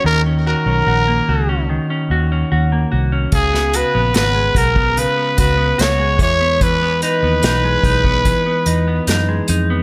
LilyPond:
<<
  \new Staff \with { instrumentName = "Trumpet" } { \time 4/4 \key e \lydian \tempo 4 = 73 ais'8 ais'4. r2 | gis'8 b'8 b'8 ais'8 b'8 b'8 cis''8 cis''8 | b'8 b'2. r8 | }
  \new Staff \with { instrumentName = "Clean electric guitar" } { \time 4/4 \key e \lydian dis16 cis'16 fis'16 cis'16 fis'16 ais16 fis'16 cis'16 dis16 cis'16 fis'16 cis'16 fis'16 ais16 fis'16 cis'16 | cis16 b16 fis'16 b16 fis'16 gis16 fis'16 b16 cis16 b16 fis'16 b16 fis'16 gis16 e16 b16 | e16 b16 dis'16 b16 dis'16 gis16 dis'16 b16 e16 b16 dis'16 b16 dis'16 gis16 dis'16 b16 | }
  \new Staff \with { instrumentName = "Fingered electric bass" } { \clef bass \time 4/4 \key e \lydian dis,8. b,,16 ais,,8 cis,8. r16 dis,8 dis,8 bis,,8 | cis,8. ais,,16 gis,,8 b,,8. r16 cis,8 cis,8 e,8~ | e,8. dis,16 b,,8 b,,8. r16 e,8 fis,8 eis,8 | }
  \new DrumStaff \with { instrumentName = "Drums" } \drummode { \time 4/4 r4 r4 r4 r4 | <hh bd>16 sn16 hh8 <hh sn>8 <hh bd>16 bd16 hh8 <hh bd>8 <hh sn>8 <hh bd>8 | <hh bd>8 hh8 <hh sn>8 <hh bd>16 bd16 <hh bd>8 hh8 <hh sn>8 hh8 | }
>>